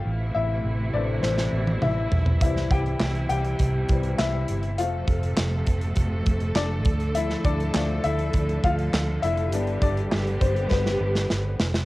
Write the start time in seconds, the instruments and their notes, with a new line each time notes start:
Already playing: upright piano F4 F5
0.03 fingered electric bass A1, string section C3 E3 A3 E4
0.34 fingered electric bass A1, upright piano E4 E5
0.64 fingered electric bass A1
0.93 fingered electric bass A1, upright piano E3 A3 C4 D4 D5
1.23 fingered electric bass A1, upright piano C4 C5, snare
1.38 snare
1.53 fingered electric bass A1
1.67 high tom
1.82 fingered electric bass A1, upright piano E4 E5, mid tom
2.11 fingered electric bass B1, floor tom
2.26 floor tom
2.41 fingered electric bass C2, string section C3 G3, upright piano E3 G3 C4 E4 E5, kick, closed hi-hat
2.57 snare
2.71 fingered electric bass C2, upright piano G4 G5, kick, closed hi-hat
2.86 closed hi-hat
3.00 fingered electric bass C2, snare, clap
3.15 closed hi-hat
3.29 fingered electric bass C2, upright piano G4 G5, closed hi-hat
3.45 closed hi-hat
3.59 fingered electric bass C2, kick, closed hi-hat
3.89 fingered electric bass C2, upright piano E3 G3 C4, kick, closed hi-hat
4.04 closed hi-hat
4.18 fingered electric bass C2, upright piano E4 E5, snare, clap
4.48 fingered electric bass G1, closed hi-hat
4.63 closed hi-hat
4.78 fingered electric bass F1, string section C3 F3 A3 A4, upright piano F3 A3 C4 F4 F5, closed hi-hat
5.08 fingered electric bass F1, kick, closed hi-hat
5.23 closed hi-hat
5.37 fingered electric bass F1, snare, clap
5.67 fingered electric bass F1, kick, closed hi-hat
5.81 closed hi-hat
5.96 fingered electric bass F1, kick, closed hi-hat
6.26 fingered electric bass F1, kick, closed hi-hat
6.40 closed hi-hat
6.55 fingered electric bass F1, upright piano D4 D5, snare, clap
6.85 fingered electric bass D2, string section D3, kick, closed hi-hat
7.00 closed hi-hat
7.15 upright piano E4 E5, closed hi-hat
7.30 snare
7.44 fingered electric bass D2, upright piano D4 D5, kick, closed hi-hat
7.60 closed hi-hat
7.74 fingered electric bass D2, upright piano F3 A3 D4, snare, clap
8.04 fingered electric bass D2, upright piano E4 E5, closed hi-hat
8.19 closed hi-hat
8.33 fingered electric bass D2, kick, closed hi-hat
8.49 closed hi-hat
8.64 fingered electric bass D2, upright piano F4 F5, kick, closed hi-hat
8.78 closed hi-hat
8.93 fingered electric bass D2, snare, clap
9.22 fingered electric bass F1, upright piano E4 E5, closed hi-hat
9.37 closed hi-hat
9.52 fingered electric bass G1, string section G3 B3 G4, upright piano G3 B3 D4, closed hi-hat
9.67 closed hi-hat
9.82 fingered electric bass G1, upright piano D4 D5, kick, closed hi-hat
9.97 closed hi-hat
10.12 fingered electric bass G1, snare, clap
10.27 closed hi-hat
10.41 fingered electric bass G1, upright piano C4 C5, kick, closed hi-hat
10.56 closed hi-hat
10.70 fingered electric bass G1, upright piano B3 B4, kick, snare
10.86 snare
11.00 fingered electric bass G1
11.15 snare
11.30 fingered electric bass G1, snare
11.60 fingered electric bass F1, snare
11.74 snare